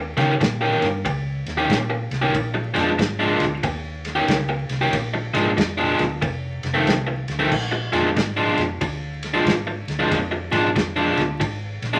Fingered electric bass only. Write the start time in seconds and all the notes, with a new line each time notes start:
Already playing: D#2
0.17 C#3
0.41 A#2
0.82 G2
1.05 C#2
1.46 D#2
1.70 A#2
2.11 C2
2.34 A#1
2.76 F2
2.99 G#2
3.40 D2
3.64 D#2
4.28 C#2
4.70 C2
4.93 A#1
5.34 G#2
5.58 F2
5.99 D2
6.22 F1
6.64 F1
6.87 C2
7.28 D2
7.52 A#1
7.93 F2
8.17 G#2
8.58 F2
8.82 D2
9.47 G#1
9.87 D2
10.11 F2
10.53 G#2
10.76 F2
11.18 D2
11.41 G#1
11.82 A#1